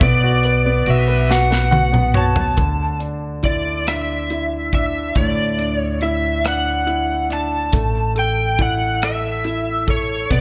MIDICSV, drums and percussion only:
0, 0, Header, 1, 2, 480
1, 0, Start_track
1, 0, Key_signature, 2, "major"
1, 0, Tempo, 858369
1, 7, Time_signature, 6, 3, 24, 8
1, 5820, End_track
2, 0, Start_track
2, 0, Title_t, "Drums"
2, 5, Note_on_c, 9, 42, 93
2, 6, Note_on_c, 9, 36, 125
2, 61, Note_off_c, 9, 42, 0
2, 62, Note_off_c, 9, 36, 0
2, 241, Note_on_c, 9, 42, 53
2, 297, Note_off_c, 9, 42, 0
2, 483, Note_on_c, 9, 42, 54
2, 538, Note_off_c, 9, 42, 0
2, 731, Note_on_c, 9, 38, 60
2, 787, Note_off_c, 9, 38, 0
2, 851, Note_on_c, 9, 38, 61
2, 907, Note_off_c, 9, 38, 0
2, 963, Note_on_c, 9, 48, 86
2, 1019, Note_off_c, 9, 48, 0
2, 1084, Note_on_c, 9, 47, 74
2, 1140, Note_off_c, 9, 47, 0
2, 1198, Note_on_c, 9, 45, 97
2, 1254, Note_off_c, 9, 45, 0
2, 1319, Note_on_c, 9, 43, 93
2, 1375, Note_off_c, 9, 43, 0
2, 1437, Note_on_c, 9, 42, 71
2, 1441, Note_on_c, 9, 36, 94
2, 1493, Note_off_c, 9, 42, 0
2, 1497, Note_off_c, 9, 36, 0
2, 1679, Note_on_c, 9, 42, 40
2, 1735, Note_off_c, 9, 42, 0
2, 1917, Note_on_c, 9, 42, 43
2, 1922, Note_on_c, 9, 36, 66
2, 1973, Note_off_c, 9, 42, 0
2, 1978, Note_off_c, 9, 36, 0
2, 2164, Note_on_c, 9, 42, 71
2, 2170, Note_on_c, 9, 37, 92
2, 2220, Note_off_c, 9, 42, 0
2, 2226, Note_off_c, 9, 37, 0
2, 2405, Note_on_c, 9, 42, 37
2, 2461, Note_off_c, 9, 42, 0
2, 2642, Note_on_c, 9, 42, 43
2, 2645, Note_on_c, 9, 36, 68
2, 2698, Note_off_c, 9, 42, 0
2, 2700, Note_off_c, 9, 36, 0
2, 2882, Note_on_c, 9, 42, 75
2, 2884, Note_on_c, 9, 36, 93
2, 2937, Note_off_c, 9, 42, 0
2, 2940, Note_off_c, 9, 36, 0
2, 3124, Note_on_c, 9, 42, 42
2, 3180, Note_off_c, 9, 42, 0
2, 3360, Note_on_c, 9, 42, 42
2, 3416, Note_off_c, 9, 42, 0
2, 3605, Note_on_c, 9, 42, 72
2, 3610, Note_on_c, 9, 37, 99
2, 3660, Note_off_c, 9, 42, 0
2, 3666, Note_off_c, 9, 37, 0
2, 3843, Note_on_c, 9, 42, 42
2, 3899, Note_off_c, 9, 42, 0
2, 4084, Note_on_c, 9, 42, 41
2, 4140, Note_off_c, 9, 42, 0
2, 4320, Note_on_c, 9, 42, 73
2, 4324, Note_on_c, 9, 36, 96
2, 4376, Note_off_c, 9, 42, 0
2, 4380, Note_off_c, 9, 36, 0
2, 4563, Note_on_c, 9, 42, 44
2, 4619, Note_off_c, 9, 42, 0
2, 4801, Note_on_c, 9, 42, 45
2, 4803, Note_on_c, 9, 36, 71
2, 4857, Note_off_c, 9, 42, 0
2, 4859, Note_off_c, 9, 36, 0
2, 5044, Note_on_c, 9, 42, 75
2, 5050, Note_on_c, 9, 37, 99
2, 5100, Note_off_c, 9, 42, 0
2, 5106, Note_off_c, 9, 37, 0
2, 5281, Note_on_c, 9, 42, 42
2, 5336, Note_off_c, 9, 42, 0
2, 5524, Note_on_c, 9, 36, 73
2, 5524, Note_on_c, 9, 42, 44
2, 5580, Note_off_c, 9, 36, 0
2, 5580, Note_off_c, 9, 42, 0
2, 5763, Note_on_c, 9, 42, 75
2, 5764, Note_on_c, 9, 36, 101
2, 5819, Note_off_c, 9, 42, 0
2, 5820, Note_off_c, 9, 36, 0
2, 5820, End_track
0, 0, End_of_file